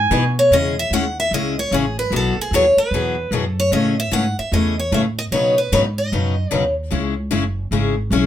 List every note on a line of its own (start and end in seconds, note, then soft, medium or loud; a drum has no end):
0.00 0.10 G#2 medium
0.00 0.37 G#5 loud
0.11 0.50 B2 loud
0.11 0.23 E3 medium
0.11 0.23 B3 medium
0.11 0.24 D#4 medium
0.11 0.24 G#4 loud
0.39 0.53 C#5 medium
0.51 0.90 E2 medium
0.51 0.74 C#3 medium
0.51 0.74 G#3 medium
0.51 0.74 C#4 medium
0.51 0.74 E4 medium
0.51 0.74 G#4 medium
0.51 0.77 D#5 medium
0.79 0.92 E5 medium
0.91 1.30 D#2 medium
0.91 1.04 C#3 medium
0.91 1.04 G#3 medium
0.91 1.04 C#4 medium
0.91 1.04 E4 medium
0.91 1.05 G#4 medium
0.91 1.17 F#5 medium
1.20 1.32 E5 medium
1.31 1.70 C#2 medium
1.31 1.54 C#3 medium
1.31 1.55 G#3 medium
1.31 1.55 C#4 medium
1.31 1.55 E4 medium
1.31 1.55 G#4 medium
1.31 1.57 D#5 loud
1.59 1.73 C#5 medium
1.71 2.10 A1 medium
1.71 1.84 C#3 medium
1.71 1.84 G#3 medium
1.71 1.84 C#4 medium
1.71 1.84 E4 medium
1.71 1.84 G#4 medium
1.71 1.99 G#4 medium
1.99 2.12 B4 medium
2.10 2.35 B1 medium
2.10 2.34 B2 medium
2.10 2.34 E3 medium
2.10 2.34 F#3 medium
2.10 2.34 B3 medium
2.10 2.34 F#4 medium
2.10 2.34 G#4 medium
2.16 2.40 A4 medium
2.41 2.54 G#4 medium
2.51 2.75 D#2 medium
2.51 2.64 B2 medium
2.51 2.64 E3 medium
2.51 2.64 F#3 medium
2.51 2.65 B3 loud
2.51 2.65 F#4 medium
2.51 2.65 G#4 loud
2.55 2.77 C#5 medium
2.77 3.38 B4 medium
2.77 muted upright bass stroke soft
2.91 3.30 E2 medium
2.91 3.15 B2 medium
2.91 3.15 E3 medium
2.91 3.15 F#3 medium
2.91 3.15 B3 medium
2.91 3.15 F#4 medium
2.95 3.15 G#4 medium
3.31 3.70 F#2 medium
3.31 3.43 B2 medium
3.31 3.44 E3 medium
3.31 3.44 F#3 medium
3.31 3.44 B3 medium
3.31 3.44 F#4 medium
3.31 3.44 G#4 medium
3.38 3.60 A4 medium
3.60 3.72 C#5 medium
3.71 4.10 A2 medium
3.71 3.94 C#3 medium
3.71 3.94 E3 medium
3.71 3.94 A3 medium
3.71 3.94 C#4 medium
3.71 3.95 G#4 medium
3.71 3.99 D#5 medium
4.00 4.13 E5 medium
4.11 4.36 G#2 medium
4.11 4.23 C#3 medium
4.11 4.23 E3 medium
4.11 4.24 A3 medium
4.11 4.24 C#4 medium
4.11 4.24 G#4 medium
4.11 4.36 F#5 medium
4.39 4.52 E5 medium
4.39 muted upright bass stroke soft
4.52 4.91 E2 medium
4.52 4.74 C#3 medium
4.52 4.74 E3 medium
4.52 4.74 A3 medium
4.52 4.75 C#4 medium
4.52 4.75 G#4 medium
4.52 4.77 D#5 medium
4.79 4.92 C#5 medium
4.92 5.31 A2 medium
4.92 5.04 C#3 medium
4.92 5.04 E3 medium
4.92 5.04 A3 medium
4.92 5.04 C#4 medium
4.92 5.04 G#4 medium
4.92 5.01 E5 medium
5.19 5.24 D#5 medium
5.31 5.70 B2 medium
5.31 5.54 B2 medium
5.31 5.54 C#3 medium
5.31 5.54 F#3 medium
5.31 5.54 B3 medium
5.31 5.55 D#4 medium
5.31 5.55 B4 medium
5.31 5.58 C#5 medium
5.58 5.72 B4 medium
5.72 6.11 G#2 medium
5.72 5.84 B2 medium
5.72 5.84 C#3 medium
5.72 5.84 F#3 medium
5.72 5.84 B3 medium
5.72 5.84 D#4 medium
5.72 5.84 B4 medium
5.72 5.80 C#5 medium
5.98 6.53 D#5 medium
6.12 6.51 F#2 medium
6.12 6.34 B2 medium
6.12 6.34 C#3 medium
6.12 6.34 F#3 medium
6.12 6.34 B3 medium
6.12 6.34 D#4 medium
6.12 6.34 B4 medium
6.51 6.90 D#2 medium
6.51 6.63 B2 medium
6.51 6.63 C#3 medium
6.51 6.63 F#3 medium
6.51 6.63 B3 medium
6.51 6.63 D#4 medium
6.51 6.63 B4 medium
6.51 6.74 C#5 medium
6.91 7.30 C#2 medium
6.91 7.13 C#3 medium
6.91 7.13 G#3 medium
6.91 7.13 C#4 medium
6.91 7.14 E4 medium
6.91 7.14 G#4 medium
7.31 7.70 F#1 medium
7.31 7.43 C#3 medium
7.31 7.43 G#3 medium
7.31 7.43 C#4 medium
7.31 7.43 E4 medium
7.31 7.43 G#4 loud
7.71 8.10 G#1 medium
7.71 7.93 C#3 medium
7.71 7.94 G#3 medium
7.71 7.94 C#4 medium
7.71 7.94 E4 medium
7.71 7.94 G#4 medium
8.10 8.26 B1 medium
8.10 8.23 C#3 medium
8.10 8.23 G#3 medium
8.10 8.23 C#4 medium
8.10 8.24 E4 medium
8.10 8.24 G#4 medium